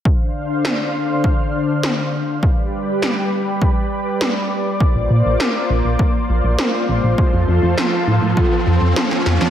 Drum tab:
SD |----o-------o---|----o-------o---|----o-------o---|----o-------oooo|
BD |o-------o-------|o-------o-------|o-------o-------|o-------o-------|